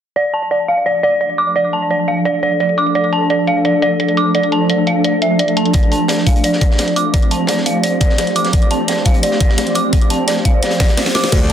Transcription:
0.16 F3 A3 D4 A4 D5, closed hi-hat
0.25 G4, closed hi-hat
0.34 A5, closed hi-hat
0.39 F5
0.46 C5
0.51 D5, closed hi-hat
0.68 F5, closed hi-hat
0.86 D5, closed hi-hat
1.03 D5, closed hi-hat
1.21 D5, closed hi-hat
1.29 closed hi-hat
1.38 D6, closed hi-hat
1.56 D5, closed hi-hat
1.64 closed hi-hat
1.73 A5, closed hi-hat
1.90 D5, closed hi-hat
2.08 F5, closed hi-hat
2.25 D5, closed hi-hat
2.43 D5, closed hi-hat
2.60 D5, closed hi-hat
2.69 closed hi-hat
2.78 D6, closed hi-hat
2.86 closed hi-hat
2.95 D5, closed hi-hat
3.04 closed hi-hat
3.13 A5, closed hi-hat
3.30 D5, closed hi-hat
3.47 F5, closed hi-hat
3.65 D5, closed hi-hat
3.82 D5, closed hi-hat
4.00 D5, closed hi-hat
4.08 closed hi-hat
4.17 D6, closed hi-hat
4.35 D5, closed hi-hat
4.43 closed hi-hat
4.52 A5, closed hi-hat
4.70 D5, closed hi-hat
4.87 F5, closed hi-hat
5.04 D5, closed hi-hat
5.22 E5, closed hi-hat
5.39 D5, closed hi-hat
5.48 closed hi-hat
5.57 A5, closed hi-hat
5.66 closed hi-hat
5.73 C4 D5, kick, closed hi-hat
5.83 closed hi-hat
5.92 A5, closed hi-hat
6.08 D5, snare, closed hi-hat
6.18 snare
6.27 F5, kick, closed hi-hat
6.36 closed hi-hat
6.44 D5, closed hi-hat
6.52 snare
6.61 D5, kick, closed hi-hat
6.71 snare
6.78 D5, snare, closed hi-hat
6.88 closed hi-hat
6.96 D6, closed hi-hat
7.14 D5, kick, closed hi-hat
7.22 closed hi-hat
7.31 A5, closed hi-hat
7.47 D5, snare, closed hi-hat
7.57 snare
7.66 F5, closed hi-hat
7.83 D5, closed hi-hat
8.01 D5, kick, closed hi-hat
8.09 snare
8.18 D5, snare, closed hi-hat
8.27 closed hi-hat
8.36 D6, closed hi-hat
8.45 snare, closed hi-hat
8.53 D5, kick, closed hi-hat
8.62 closed hi-hat
8.71 A5, closed hi-hat
8.88 D5, snare, closed hi-hat
8.97 snare
9.05 F5, kick, closed hi-hat
9.14 closed hi-hat
9.23 D5, closed hi-hat
9.31 snare
9.40 D5, kick, closed hi-hat
9.49 snare
9.58 D5, snare, closed hi-hat
9.67 closed hi-hat
9.75 D6, closed hi-hat
9.93 D5, kick, closed hi-hat
10.02 closed hi-hat
10.10 A5, closed hi-hat
10.28 D5, snare, closed hi-hat
10.36 snare
10.45 F5, kick, closed hi-hat
10.62 D5, snare, closed hi-hat
10.71 snare, closed hi-hat
10.80 D5, kick, snare, closed hi-hat
10.88 snare, closed hi-hat
10.97 D5, snare, closed hi-hat
11.06 snare, closed hi-hat
11.14 D6, snare, closed hi-hat
11.24 snare, closed hi-hat
11.32 D2 D3 F3 A3 F4 D5, kick, closed hi-hat, crash
11.41 closed hi-hat

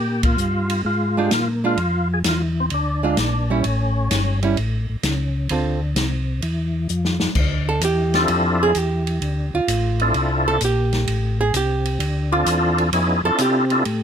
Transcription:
Already playing: A#2 G4
0.23 F4, kick, ride
0.37 G2, hi-hat pedal
0.70 ride
0.85 G#2 F4
1.17 G#3 D4 F4 G4
1.31 A#2 F4, snare, hi-hat pedal, ride
1.64 G#3 D4 F4
1.77 F2, ride
2.14 G#4
2.24 E2, snare, hi-hat pedal, ride
2.28 F4
2.60 C4
2.70 D2 D4, ride
3.03 G#3 D4 F4
3.17 A#1 D4, snare, hi-hat pedal, ride
3.50 G3 C#4 E4
3.64 A1, ride
4.11 G1, snare, hi-hat pedal, ride
4.42 G3 C#4 E4, ride
4.57 A1, ride
4.90 A1
5.03 C#2, snare, hi-hat pedal, ride
5.49 D2 D3 C4 F4 A4, ride
5.96 C2, snare, hi-hat pedal, ride
6.42 E2, ride
6.89 F2, hi-hat pedal
7.05 snare
7.20 F2, snare
7.35 D2, kick, crash
7.69 A4
7.81 E2 G4, hi-hat pedal, ride
8.14 C4 D4 E4 F4 A4, snare, ride
8.28 F2, ride
8.63 G#4
8.75 E2 G4, hi-hat pedal, ride
9.07 ride
9.21 D2, ride
9.54 D2 F4
9.68 A1, hi-hat pedal, ride
10.00 C4 D4 E4 F4 A4, ride
10.14 C2, ride
10.48 A4
10.61 A#1 G4, hi-hat pedal, ride
10.93 snare, ride
11.07 A1, ride
11.41 G#4
11.54 C2 G4, hi-hat pedal, ride
11.85 ride
11.99 D2, ride
12.32 C4 D4 F4 A4
12.46 E2, hi-hat pedal, ride
12.78 ride
12.92 F2 B3 C#4 D#4 E4 G#4, ride
13.24 F2 C4 D4 E4 F4 A4
13.38 C3 G4, hi-hat pedal, ride
13.70 C4 D4 E4 F4 A4, ride
13.85 A2, ride

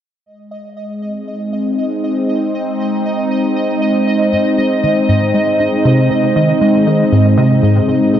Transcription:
0.26 G#3 D#5
0.94 C4
1.17 D#4
4.32 G#2
4.58 G#3
4.83 D#3
5.09 G#2
5.34 G#3
5.59 D#4
5.85 C3
6.10 C3
6.36 D#3
6.61 G#3
6.87 D#3
7.12 G#2
7.37 C3
7.63 G#2
7.88 G#2
8.14 C3

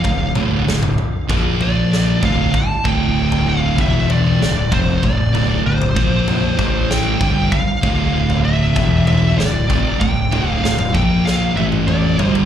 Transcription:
Already playing: F5
0.04 D1 D2 A2, kick, floor tom
0.35 D1 D2 A2 D3, floor tom
0.66 D1 D2 A2, snare
0.83 floor tom, mid tom
0.98 mid tom
1.29 A#1 A#2 F3 A#3, kick, floor tom, mid tom
1.61 D5, floor tom
1.93 snare
2.23 D1 D2 A2 D3 F5, kick, floor tom, mid tom
2.54 A5, kick, floor tom
2.85 D1 D2 A2 D3 G5, kick, floor tom
3.32 floor tom
3.49 F5
3.78 E1 E2 B2 E3 E5, kick, floor tom, mid tom
4.10 D5, floor tom
4.40 D1 D2 A2, snare
4.71 F1 F2 C3 F3 C5, kick, floor tom, mid tom
5.03 D1 D2 A2 D5, kick, floor tom
5.33 D1 D2 A2 D3, floor tom
5.65 D1 D2 A2 C5
5.82 floor tom
5.95 A#1 A#2 F3 A#3, kick
6.28 floor tom, mid tom
6.57 A1 A2 E3 A3, kick, floor tom
6.91 G5, snare
7.20 G1 G2 D3 G3, kick, floor tom, mid tom
7.52 F5, kick, floor tom
7.82 D1 D2 A2 D3, kick, floor tom
8.30 floor tom
8.44 E5
8.75 E1 E2 B2 E3, kick, floor tom, mid tom
9.07 E5, floor tom
9.37 D1 D2 A2 D5, snare
9.68 F1 F2 C3 F3, kick, floor tom, mid tom
9.99 D1 D2 A2 G5, kick, floor tom
10.31 D1 D2 A2 D3, floor tom
10.50 F5
10.62 D1 D2 A2 F5, snare
10.79 floor tom, mid tom
10.93 A#1 A#2 F3 A#3 G5, kick, mid tom
11.25 F5, snare
11.55 A1 A2 E3 A3 E5, high tom
11.72 high tom
11.87 D5, mid tom
12.18 G1 G2 D3 G3, floor tom
12.35 floor tom

